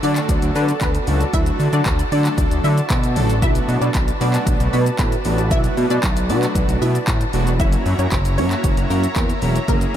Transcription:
Already playing: F#4 A4 D5 A5
0.03 D3 F#3 A3 D4 F#4 D5, open hi-hat, shaker
0.16 clap, closed hi-hat, shaker
0.29 D2, kick, closed hi-hat, shaker
0.42 D2, closed hi-hat, shaker
0.56 D3 B3 B4, open hi-hat, shaker
0.69 closed hi-hat, shaker
0.81 D2 B3 B4, kick, clap, closed hi-hat, shaker
0.95 closed hi-hat, shaker
1.07 C#2 D3 F#3 A3 D4 F#4, open hi-hat, shaker
1.21 closed hi-hat, shaker
1.33 D2 D3 F#3 A3 D4 E4 F#4 E5, kick, closed hi-hat, shaker
1.46 closed hi-hat, shaker
1.60 D3, open hi-hat, shaker
1.73 D3 D4 D5, closed hi-hat, shaker
1.86 D2, kick, clap, closed hi-hat, shaker
1.99 closed hi-hat, shaker
2.12 D3 F#3 A3 D4 A4 D5, open hi-hat, shaker
2.25 clap, closed hi-hat, shaker
2.38 D2, kick, closed hi-hat, shaker
2.51 D2, closed hi-hat, shaker
2.64 D3 E4 E5, open hi-hat, shaker
2.78 closed hi-hat, shaker
2.90 B2, kick, clap, closed hi-hat, shaker
3.04 closed hi-hat, shaker
3.16 A1 D3 F#3 A3 D4 A4, open hi-hat, shaker
3.30 closed hi-hat, shaker
3.42 B1 F#3 A3 B3 D4 E4 F#4 B4 E5, kick, closed hi-hat, shaker
3.55 closed hi-hat, shaker
3.69 B2, open hi-hat, shaker
3.81 B2 D4 D5, closed hi-hat, shaker
3.94 B1, kick, clap, closed hi-hat, shaker
4.08 closed hi-hat, shaker
4.20 B2 F#3 A3 B3 D4 F#4 D5, open hi-hat, shaker
4.34 clap, closed hi-hat, shaker
4.47 B1, kick, closed hi-hat, shaker
4.60 B1, closed hi-hat, shaker
4.73 B2 B3 B4, open hi-hat, shaker
4.86 closed hi-hat, shaker
4.99 A2 B3 B4, kick, clap, closed hi-hat, shaker
5.12 closed hi-hat, shaker
5.25 A1 F#3 A3 B3 D4 F#4, open hi-hat, shaker
5.38 closed hi-hat, shaker
5.51 B1 F#3 A3 B3 D4 E4 F#4 E5, kick, closed hi-hat, shaker
5.64 closed hi-hat, shaker
5.77 B2, open hi-hat, shaker
5.90 B2 D4 D5, closed hi-hat, shaker
6.03 B1, kick, clap, closed hi-hat, shaker
6.17 closed hi-hat, shaker
6.29 B2 F#3 A3 B3 D4 F#4 D5, open hi-hat, shaker
6.43 clap, closed hi-hat, shaker
6.55 B1, kick, closed hi-hat, shaker
6.69 B1, closed hi-hat, shaker
6.82 B2 E4 E5, open hi-hat, shaker
6.95 closed hi-hat, shaker
7.08 A2, kick, clap, closed hi-hat, shaker
7.21 closed hi-hat, shaker
7.33 E1 F#3 A3 B3 D4 F#4, open hi-hat, shaker
7.47 closed hi-hat, shaker
7.60 F#1 F#3 A#3 C#4 E4 F#4 C#5 E5 A#5, kick, closed hi-hat, shaker
7.72 closed hi-hat, shaker
7.86 F#2, open hi-hat, shaker
7.99 F#2 C#4 C#5, closed hi-hat, shaker
8.12 F#1, kick, clap, closed hi-hat, shaker
8.25 closed hi-hat, shaker
8.38 F#2 F#3 A#3 C#4 E4 F#4 C#5, open hi-hat, shaker
8.51 clap, closed hi-hat, shaker
8.64 F#1, kick, closed hi-hat, shaker
8.77 F#1, closed hi-hat, shaker
8.90 F#2 A#3 A#4, open hi-hat, shaker
9.04 closed hi-hat, shaker
9.16 E2 A#3 A#4, kick, clap, closed hi-hat, shaker
9.30 closed hi-hat, shaker
9.42 E1 F#3 A#3 C#4 E4 F#4, open hi-hat, shaker
9.56 closed hi-hat, shaker
9.68 F#1 F#3 A#3 C#4 E4 G#4 A#4, kick, closed hi-hat, shaker
9.81 closed hi-hat, shaker

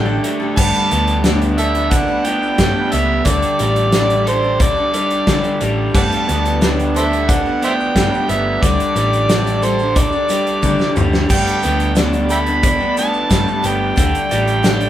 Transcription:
Already playing: A1 D3 G3 A3 D4 G4 G5
0.06 D4 G4 A4
0.23 A3, closed hi-hat
0.40 D4 G4 A4
0.56 G1 G2 D3 G3 A3 B3 D4 G4 B4 A5, kick, crash, shaker
0.74 closed hi-hat
0.91 D2 A3 B3 D4 B4, closed hi-hat, shaker
1.07 closed hi-hat, shaker
1.24 G2 D3 A3 B3 D4 B4, snare, closed hi-hat, shaker
1.42 closed hi-hat, shaker
1.58 A3 B3 D4 A4 B4 E5, closed hi-hat, shaker
1.75 A3 B3 D4 B4, closed hi-hat
1.91 D4 F#5, kick, closed hi-hat, shaker
2.08 A3 B3 D4 B4
2.25 A3 B3 G5, closed hi-hat, shaker
2.29 D4 B4
2.43 shaker
2.58 G2 D3 G3 A3 B3 D4 B4, kick, snare, closed hi-hat, shaker
2.92 C#2 A3 B3 D4 B4 E5, closed hi-hat, shaker
3.25 D2 D3 G3 A3 D4 G4 A4 D5, kick, closed hi-hat, shaker
3.29 A4
3.42 closed hi-hat
3.59 A1 G3 D4 G4, closed hi-hat, shaker
3.63 A4
3.76 closed hi-hat
3.92 D3 G3 D4 G4 A4, snare, closed hi-hat, shaker
4.10 closed hi-hat, shaker
4.26 G3 D4 G4 A4 C5, closed hi-hat
4.30 A4
4.42 D4 G4 A4
4.60 D4 D5, kick, closed hi-hat, shaker
4.77 D4 G4 A4
4.93 G3 D4 G4 A4, closed hi-hat, shaker
5.10 closed hi-hat, shaker
5.27 D3 G3 D4 G4 A4, kick, snare, closed hi-hat, shaker
5.44 closed hi-hat, shaker
5.61 A1 G3 D4 G4 A4, closed hi-hat, shaker
5.94 G1 G2 D3 G3 A3 B3 D4 G4 A4 B4 D5 F#5 A5, kick, crash, shaker
6.12 closed hi-hat
6.28 D2 A3 B3 D4 B4, closed hi-hat, shaker
6.45 closed hi-hat, shaker
6.61 G2 D3 A3 B3 D4 B4, snare, closed hi-hat, shaker
6.79 closed hi-hat, shaker
6.94 A3 B3 D4 A4 B4 C5 E5, closed hi-hat, shaker
7.11 A3 B3 D4 B4, closed hi-hat
7.29 D4 F#5, kick, closed hi-hat, shaker
7.46 A3 B3 D4 B4
7.62 A3 B3 D4 B4 C5 E5 G5, closed hi-hat, shaker
7.80 shaker
7.95 G2 D3 G3 A3 B3 D4 B4, kick, snare, closed hi-hat, shaker
8.14 shaker
8.29 G1 A3 B3 D4 B4 E5, closed hi-hat, shaker
8.63 D2 D3 G3 A3 D4 G4 A4 D5, kick, closed hi-hat, shaker
8.80 closed hi-hat, shaker
8.96 A1 G3 D4 G4 A4, closed hi-hat, shaker
9.13 closed hi-hat, shaker
9.29 D3 G3 D4 G4 A4, snare, closed hi-hat, shaker
9.46 closed hi-hat, shaker
9.62 G3 D4 A4 C5, closed hi-hat, shaker
9.66 G4 A4
9.79 G4 A4, shaker
9.83 D4
9.95 D4 D5, kick, closed hi-hat, shaker
10.12 D4 G4 A4, shaker
10.29 G3 D4 G4 A4, closed hi-hat, shaker
10.47 closed hi-hat
10.62 D3 G3 D4 G4 A4, kick, high tom, shaker
10.79 snare, shaker
10.96 D2 G3 D4 G4 A4, mid tom, shaker
11.13 snare, shaker
11.30 G1 G2 D3 G3 A3 B3 D4 G4 A4 G5, kick, crash, shaker
11.47 closed hi-hat
11.63 D2 A3 B3 D4 A4, closed hi-hat, shaker
11.79 closed hi-hat, shaker
11.96 G2 D3 A3 B3 D4 A4, snare, closed hi-hat, shaker
12.13 closed hi-hat, shaker
12.29 A3 B3 D4 A4 E5 G5 B5, closed hi-hat, shaker
12.46 A3 B3 D4 A4, closed hi-hat
12.63 D4, kick, closed hi-hat, shaker
12.80 A3 B3 D4 A4
12.97 A3 B3 D4 A4 A5, closed hi-hat, shaker
13.14 shaker
13.30 G2 D3 G3 A3 B3 D4 A4, kick, snare, closed hi-hat, shaker
13.48 shaker
13.63 G1 A3 B3 D4 A4 G5, closed hi-hat, shaker
13.96 D2 D3 G3 A3 D4 G4 A4, kick, closed hi-hat, shaker
14.15 closed hi-hat
14.29 A1 G3 D4 G4 A4, closed hi-hat, shaker
14.48 closed hi-hat, shaker
14.63 D3 G3 D4 G4 A4, snare, closed hi-hat, shaker
14.81 closed hi-hat, shaker

